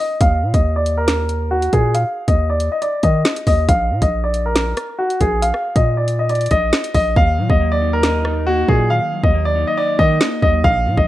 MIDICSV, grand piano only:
0, 0, Header, 1, 2, 480
1, 0, Start_track
1, 0, Key_signature, -6, "minor"
1, 0, Tempo, 434783
1, 229, Time_signature, 4, 2, 24, 8
1, 12228, End_track
2, 0, Start_track
2, 0, Title_t, "Grand piano"
2, 0, Program_c, 0, 0
2, 0, Note_on_c, 0, 75, 85
2, 206, Note_off_c, 0, 75, 0
2, 232, Note_on_c, 0, 77, 104
2, 576, Note_off_c, 0, 77, 0
2, 595, Note_on_c, 0, 75, 76
2, 814, Note_off_c, 0, 75, 0
2, 839, Note_on_c, 0, 74, 88
2, 1056, Note_off_c, 0, 74, 0
2, 1076, Note_on_c, 0, 70, 85
2, 1633, Note_off_c, 0, 70, 0
2, 1666, Note_on_c, 0, 66, 88
2, 1886, Note_off_c, 0, 66, 0
2, 1912, Note_on_c, 0, 68, 91
2, 2129, Note_off_c, 0, 68, 0
2, 2147, Note_on_c, 0, 77, 87
2, 2493, Note_off_c, 0, 77, 0
2, 2516, Note_on_c, 0, 75, 78
2, 2735, Note_off_c, 0, 75, 0
2, 2757, Note_on_c, 0, 74, 85
2, 2975, Note_off_c, 0, 74, 0
2, 3000, Note_on_c, 0, 75, 79
2, 3101, Note_off_c, 0, 75, 0
2, 3111, Note_on_c, 0, 74, 93
2, 3329, Note_off_c, 0, 74, 0
2, 3348, Note_on_c, 0, 75, 91
2, 3800, Note_off_c, 0, 75, 0
2, 3831, Note_on_c, 0, 75, 88
2, 4049, Note_off_c, 0, 75, 0
2, 4071, Note_on_c, 0, 77, 105
2, 4415, Note_off_c, 0, 77, 0
2, 4435, Note_on_c, 0, 75, 77
2, 4654, Note_off_c, 0, 75, 0
2, 4678, Note_on_c, 0, 74, 82
2, 4896, Note_off_c, 0, 74, 0
2, 4920, Note_on_c, 0, 70, 77
2, 5475, Note_off_c, 0, 70, 0
2, 5504, Note_on_c, 0, 66, 84
2, 5725, Note_off_c, 0, 66, 0
2, 5751, Note_on_c, 0, 68, 92
2, 5968, Note_off_c, 0, 68, 0
2, 5986, Note_on_c, 0, 77, 94
2, 6332, Note_off_c, 0, 77, 0
2, 6355, Note_on_c, 0, 75, 84
2, 6574, Note_off_c, 0, 75, 0
2, 6593, Note_on_c, 0, 74, 83
2, 6813, Note_off_c, 0, 74, 0
2, 6834, Note_on_c, 0, 75, 75
2, 6938, Note_off_c, 0, 75, 0
2, 6951, Note_on_c, 0, 74, 90
2, 7168, Note_off_c, 0, 74, 0
2, 7187, Note_on_c, 0, 75, 96
2, 7639, Note_off_c, 0, 75, 0
2, 7667, Note_on_c, 0, 75, 88
2, 7886, Note_off_c, 0, 75, 0
2, 7912, Note_on_c, 0, 77, 100
2, 8255, Note_off_c, 0, 77, 0
2, 8276, Note_on_c, 0, 75, 76
2, 8495, Note_off_c, 0, 75, 0
2, 8519, Note_on_c, 0, 74, 86
2, 8736, Note_off_c, 0, 74, 0
2, 8757, Note_on_c, 0, 70, 83
2, 9314, Note_off_c, 0, 70, 0
2, 9346, Note_on_c, 0, 66, 93
2, 9566, Note_off_c, 0, 66, 0
2, 9590, Note_on_c, 0, 68, 91
2, 9808, Note_off_c, 0, 68, 0
2, 9827, Note_on_c, 0, 77, 89
2, 10173, Note_off_c, 0, 77, 0
2, 10195, Note_on_c, 0, 75, 76
2, 10414, Note_off_c, 0, 75, 0
2, 10436, Note_on_c, 0, 74, 86
2, 10654, Note_off_c, 0, 74, 0
2, 10680, Note_on_c, 0, 75, 80
2, 10781, Note_off_c, 0, 75, 0
2, 10791, Note_on_c, 0, 74, 92
2, 11008, Note_off_c, 0, 74, 0
2, 11027, Note_on_c, 0, 75, 93
2, 11479, Note_off_c, 0, 75, 0
2, 11507, Note_on_c, 0, 75, 87
2, 11726, Note_off_c, 0, 75, 0
2, 11748, Note_on_c, 0, 77, 105
2, 12093, Note_off_c, 0, 77, 0
2, 12114, Note_on_c, 0, 75, 74
2, 12228, Note_off_c, 0, 75, 0
2, 12228, End_track
0, 0, End_of_file